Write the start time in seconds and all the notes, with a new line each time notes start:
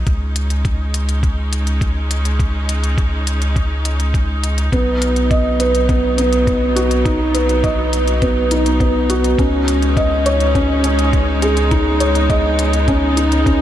Already playing: D#4
0.07 C#2 G#3 C#4, kick, closed hi-hat
0.36 closed hi-hat
0.50 closed hi-hat
0.65 kick, closed hi-hat
0.94 closed hi-hat
1.09 closed hi-hat
1.23 kick, closed hi-hat
1.53 closed hi-hat
1.67 closed hi-hat
1.81 kick, closed hi-hat
2.11 closed hi-hat
2.25 closed hi-hat
2.39 kick, closed hi-hat
2.69 closed hi-hat
2.84 closed hi-hat
2.98 kick, closed hi-hat
3.27 closed hi-hat
3.42 closed hi-hat
3.56 kick, closed hi-hat
3.85 closed hi-hat
4.00 closed hi-hat
4.14 kick, closed hi-hat
4.44 closed hi-hat
4.58 closed hi-hat
4.72 B1 F#3 B3, kick, closed hi-hat
5.02 closed hi-hat
5.16 closed hi-hat
5.31 D#5, kick, closed hi-hat
5.60 B4, closed hi-hat
5.75 closed hi-hat
5.89 B3, kick, closed hi-hat
6.18 B3, closed hi-hat
6.33 closed hi-hat
6.47 kick, closed hi-hat
6.76 F#4, closed hi-hat
6.91 closed hi-hat
7.05 D#4, kick, closed hi-hat
7.34 B4, closed hi-hat
7.49 closed hi-hat
7.64 D#5, kick, closed hi-hat
7.93 closed hi-hat
8.08 closed hi-hat
8.22 B3, kick, closed hi-hat
8.51 D#4, closed hi-hat
8.66 closed hi-hat
8.80 B3, kick, closed hi-hat
9.10 F#4, closed hi-hat
9.24 closed hi-hat
9.38 C#2 G#3 C#4 D#4, kick, closed hi-hat
9.68 closed hi-hat
9.82 closed hi-hat
9.97 D#5, kick, closed hi-hat
10.26 C#5, closed hi-hat
10.40 closed hi-hat
10.55 C#4, kick, closed hi-hat
10.84 C#4, closed hi-hat
10.99 closed hi-hat
11.13 kick, closed hi-hat
11.42 G#4, closed hi-hat
11.57 closed hi-hat
11.71 B3 D#4, kick, closed hi-hat
12.00 C#5, closed hi-hat
12.15 closed hi-hat
12.30 D#5, kick, closed hi-hat
12.59 closed hi-hat
12.73 closed hi-hat
12.88 C#4, kick, closed hi-hat
13.17 D#4, closed hi-hat
13.32 closed hi-hat
13.46 C#4, kick, closed hi-hat